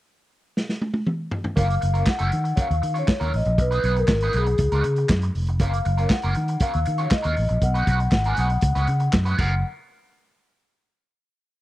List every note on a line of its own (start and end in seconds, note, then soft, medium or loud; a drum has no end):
0.57 snare medium
0.69 snare medium
0.81 high tom medium
0.94 high tom medium
1.07 mid tom medium
1.31 floor tom loud
1.44 floor tom medium
1.56 1.76 F#1 loud
1.56 1.74 A#3 medium
1.56 1.68 C#4 medium
1.56 1.68 F4 medium
1.56 1.67 A#4 loud
1.56 2.04 F5 loud
1.56 kick loud
1.56 closed hi-hat medium
1.69 muted clean electric guitar stroke soft
1.69 closed hi-hat soft
1.81 2.02 F#1 loud
1.81 muted clean electric guitar stroke soft
1.81 closed hi-hat medium
1.94 2.05 A#3 soft
1.94 2.06 C#4 soft
1.94 2.06 F4 medium
1.94 2.06 A#4 medium
1.94 closed hi-hat soft
2.06 2.60 F#5 loud
2.06 muted clean electric guitar stroke soft
2.06 kick loud
2.06 snare medium
2.06 clap medium
2.19 2.30 F#1 medium
2.19 2.31 A#3 medium
2.19 2.31 C#4 medium
2.19 2.31 F4 medium
2.19 2.31 A#4 medium
2.19 closed hi-hat medium
2.32 2.52 D#3 loud
2.32 closed hi-hat medium
2.44 muted clean electric guitar stroke soft
2.44 closed hi-hat soft
2.56 2.74 F#3 medium
2.56 2.69 C#4 medium
2.56 2.69 F4 medium
2.56 2.68 A#4 medium
2.56 kick loud
2.56 closed hi-hat medium
2.61 2.98 F5 loud
2.69 2.80 D#2 loud
2.69 muted clean electric guitar stroke soft
2.69 closed hi-hat soft
2.82 3.02 D#3 medium
2.82 muted clean electric guitar stroke soft
2.82 closed hi-hat medium
2.94 3.07 F#3 soft
2.94 3.07 C#4 medium
2.94 3.07 F4 medium
2.94 3.08 C#5 medium
2.94 closed hi-hat soft
2.99 3.36 C#5 medium
3.08 muted clean electric guitar stroke soft
3.08 kick loud
3.08 snare loud
3.08 clap loud
3.20 3.30 D#2 medium
3.20 3.32 F#3 medium
3.20 3.32 C#4 medium
3.20 3.32 F4 medium
3.20 3.33 A#4 medium
3.20 closed hi-hat soft
3.33 3.43 A1 medium
3.33 3.60 D#5 medium
3.33 muted clean electric guitar stroke soft
3.33 open hi-hat medium
3.45 3.59 A#1 medium
3.45 muted clean electric guitar stroke soft
3.45 closed hi-hat soft
3.58 3.78 B1 loud
3.58 3.98 B4 medium
3.58 muted clean electric guitar stroke soft
3.58 kick medium
3.58 closed hi-hat medium
3.71 3.83 B3 medium
3.71 3.83 D#4 medium
3.71 3.84 G#4 medium
3.71 3.84 B4 medium
3.71 closed hi-hat soft
3.84 4.03 B1 loud
3.84 3.97 B3 medium
3.84 3.98 D#4 medium
3.84 3.97 G#4 medium
3.84 3.96 B4 medium
3.84 closed hi-hat medium
3.96 4.36 A#4 loud
3.96 muted clean electric guitar stroke medium
3.96 closed hi-hat soft
4.08 4.28 G#1 medium
4.08 muted clean electric guitar stroke soft
4.08 kick loud
4.08 snare loud
4.08 clap medium
4.21 4.34 D#4 medium
4.21 4.35 G#4 medium
4.21 4.36 B4 medium
4.21 closed hi-hat medium
4.25 4.34 B3 medium
4.33 4.53 B1 loud
4.33 4.48 B3 medium
4.33 4.48 D#4 medium
4.33 4.47 G#4 medium
4.33 4.47 B4 medium
4.33 closed hi-hat medium
4.37 5.07 G#4 medium
4.46 muted clean electric guitar stroke soft
4.46 closed hi-hat soft
4.58 4.69 C#2 loud
4.58 muted clean electric guitar stroke soft
4.58 kick loud
4.58 closed hi-hat medium
4.72 4.81 C#2 loud
4.72 4.84 G#3 medium
4.72 4.85 D#4 medium
4.72 4.85 F#4 medium
4.72 4.85 B4 medium
4.72 closed hi-hat soft
4.84 5.04 C#3 medium
4.84 muted clean electric guitar stroke soft
4.84 closed hi-hat medium
4.96 muted clean electric guitar stroke soft
4.96 closed hi-hat soft
5.09 5.29 F#2 loud
5.09 muted clean electric guitar stroke soft
5.09 kick loud
5.09 snare loud
5.09 clap loud
5.22 muted clean electric guitar stroke medium
5.22 closed hi-hat soft
5.35 5.60 F1 medium
5.35 open hi-hat medium
5.47 muted clean electric guitar stroke soft
5.47 closed hi-hat soft
5.59 5.79 F#1 loud
5.59 5.78 A#3 medium
5.59 5.73 C#4 medium
5.59 5.73 F4 medium
5.59 5.72 A#4 medium
5.59 6.13 F5 medium
5.59 kick loud
5.59 closed hi-hat medium
5.73 muted clean electric guitar stroke soft
5.73 closed hi-hat medium
5.85 6.05 F#1 loud
5.85 muted clean electric guitar stroke soft
5.85 closed hi-hat medium
5.97 6.09 A#3 soft
5.97 6.10 C#4 medium
5.97 6.10 F4 medium
5.97 6.10 A#4 medium
5.97 closed hi-hat soft
6.10 6.63 F#5 medium
6.10 muted clean electric guitar stroke soft
6.10 kick loud
6.10 snare loud
6.10 clap medium
6.22 6.33 F#1 medium
6.22 6.35 A#3 medium
6.22 6.35 C#4 medium
6.22 6.35 F4 medium
6.22 6.35 A#4 medium
6.22 closed hi-hat soft
6.35 6.56 D#3 loud
6.35 muted clean electric guitar stroke soft
6.35 closed hi-hat medium
6.48 muted clean electric guitar stroke soft
6.48 closed hi-hat soft
6.60 6.79 F#3 medium
6.60 6.73 C#4 medium
6.60 6.72 F4 medium
6.60 6.72 A#4 medium
6.60 7.13 F5 loud
6.60 kick loud
6.60 closed hi-hat medium
6.73 6.84 D#2 medium
6.73 muted clean electric guitar stroke medium
6.73 closed hi-hat soft
6.85 7.06 D#3 medium
6.85 muted clean electric guitar stroke soft
6.85 closed hi-hat medium
6.98 7.09 F#3 medium
6.98 7.10 C#4 soft
6.98 7.10 F4 medium
6.98 7.11 C#5 medium
6.98 closed hi-hat soft
7.10 7.64 D#5 medium
7.10 muted clean electric guitar stroke soft
7.10 kick loud
7.10 snare loud
7.10 clap loud
7.23 7.34 D#2 medium
7.23 7.35 F#3 medium
7.23 7.35 C#4 medium
7.23 7.35 F4 medium
7.23 7.36 A#4 medium
7.23 closed hi-hat soft
7.36 7.47 A1 medium
7.36 muted clean electric guitar stroke soft
7.36 open hi-hat medium
7.49 7.60 A#1 medium
7.49 muted clean electric guitar stroke medium
7.49 closed hi-hat soft
7.62 7.81 B1 loud
7.62 8.13 F#5 loud
7.62 muted clean electric guitar stroke soft
7.62 kick medium
7.62 closed hi-hat medium
7.74 7.86 G#3 medium
7.74 7.87 D#4 medium
7.74 7.87 F#4 medium
7.74 7.88 B4 medium
7.74 closed hi-hat soft
7.87 8.07 B1 loud
7.87 8.01 G#3 medium
7.87 8.00 D#4 medium
7.87 7.99 F#4 medium
7.87 7.99 B4 medium
7.87 kick medium
7.87 closed hi-hat medium
8.00 muted clean electric guitar stroke soft
8.00 closed hi-hat soft
8.11 8.32 G#1 medium
8.11 8.26 F#5 loud
8.11 muted clean electric guitar stroke soft
8.11 kick loud
8.11 snare loud
8.11 clap medium
8.24 8.37 G#3 medium
8.24 8.37 D#4 medium
8.24 8.38 F#4 medium
8.24 8.39 B4 medium
8.24 8.39 G#5 medium
8.24 closed hi-hat soft
8.37 8.57 B1 loud
8.37 8.52 G#3 medium
8.37 8.51 D#4 medium
8.37 8.50 F#4 medium
8.37 8.49 B4 medium
8.37 9.11 F#5 medium
8.37 closed hi-hat medium
8.50 muted clean electric guitar stroke soft
8.50 closed hi-hat soft
8.61 8.73 C#2 medium
8.61 muted clean electric guitar stroke soft
8.61 kick loud
8.61 closed hi-hat medium
8.75 8.85 C#2 medium
8.75 8.87 G#3 medium
8.75 8.88 C#4 medium
8.75 8.88 F#4 medium
8.75 8.88 B4 medium
8.75 snare soft
8.75 closed hi-hat soft
8.87 9.08 C#3 loud
8.87 muted clean electric guitar stroke soft
8.87 closed hi-hat medium
9.00 muted clean electric guitar stroke soft
9.00 closed hi-hat soft
9.12 9.33 F#2 medium
9.12 muted clean electric guitar stroke soft
9.12 kick loud
9.12 snare loud
9.12 clap loud
9.25 9.37 G#3 medium
9.25 9.36 C#4 medium
9.25 9.38 F#4 medium
9.25 9.38 B4 medium
9.25 closed hi-hat soft
9.37 9.62 F#1 medium
9.37 9.53 F#3 medium
9.37 9.53 C#4 medium
9.37 9.54 F4 medium
9.37 9.54 A#4 medium
9.37 9.63 F#5 medium
9.37 kick loud
9.37 crash medium